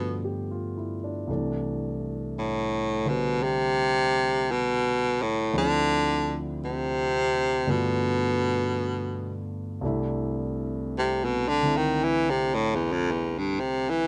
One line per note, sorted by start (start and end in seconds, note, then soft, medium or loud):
0.00 1.29 G2 soft
0.00 0.26 B2 medium
0.00 1.29 D3 soft
0.00 1.29 F3 soft
0.00 1.29 A3 soft
0.00 1.29 B3 soft
0.25 0.73 G4 soft
0.51 0.96 F4 soft
0.78 1.09 E4 soft
1.04 1.30 D4 soft
1.27 5.52 C2 soft
1.27 5.53 E3 soft
1.27 5.54 A3 soft
1.32 5.54 D4 soft
2.39 3.10 A2 medium
3.05 3.45 B2 medium
3.05 5.52 D3 soft
3.05 5.53 G3 soft
3.05 5.54 C5 soft
3.43 4.53 C3 medium
4.51 5.24 B2 medium
5.22 5.55 A2 medium
5.53 7.66 D2 medium
5.53 7.65 D3 soft
5.53 7.67 F3 soft
5.53 7.67 C4 soft
5.53 7.67 E4 medium
5.58 6.40 D3 medium
6.65 7.72 C3 medium
7.67 9.82 G2 soft
7.67 9.82 D3 soft
7.67 9.82 A3 soft
7.67 9.83 B3 soft
7.67 9.83 F4 soft
7.71 9.49 B2 medium
9.81 14.07 C2 soft
9.81 14.07 C3 soft
9.81 14.07 A3 soft
9.81 14.07 D4 soft
9.86 11.64 E4 medium
10.99 11.26 C3 medium
11.25 11.50 B2 medium
11.49 11.78 D3 medium
11.62 14.07 D3 soft
11.62 14.07 C4 soft
11.62 14.07 E4 soft
11.77 12.05 D#3 medium
12.04 12.32 E3 medium
12.30 12.56 C3 medium
12.55 12.77 A2 medium
12.75 12.94 E2 medium
12.93 13.13 F2 medium
13.11 13.40 E2 medium
13.38 13.62 G2 medium
13.60 13.91 C3 medium
13.90 14.07 E3 medium